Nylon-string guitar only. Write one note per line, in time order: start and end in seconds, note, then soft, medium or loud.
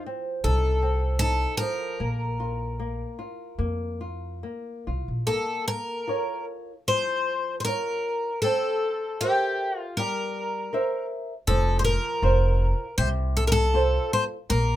0.00 1.59 F3 medium
0.06 0.43 C4 medium
0.44 0.81 D#4 medium
0.82 1.20 C4 soft
1.21 1.59 D#4 soft
1.60 1.98 F3 soft
2.00 2.78 A#3 medium
2.40 2.77 F4 soft
2.80 3.17 A#3 soft
3.19 3.57 F4 soft
3.58 3.99 A#3 soft
4.01 4.42 F4 soft
4.43 4.85 A#3 soft
4.87 5.26 F4 soft
5.26 6.05 A#3 medium
6.07 6.71 F4 soft
6.07 6.72 A#4 soft
6.07 6.73 C#5 soft
6.88 7.64 F3 medium
7.66 8.28 F4 soft
7.66 8.29 A#4 soft
7.66 8.29 C#5 soft
8.44 9.19 C4 medium
9.22 9.83 A#4 soft
9.22 9.83 C5 soft
9.22 9.84 E5 medium
9.99 10.71 G3 medium
10.73 11.32 A#4 soft
10.73 11.33 C5 soft
10.73 11.33 E5 medium
11.48 12.20 F3 medium
12.23 12.83 F4 soft
12.23 12.84 C5 medium
12.98 13.72 C3 medium
13.73 14.35 F4 medium
13.73 14.35 A4 soft
13.73 14.35 C5 medium
14.49 14.76 A#3 medium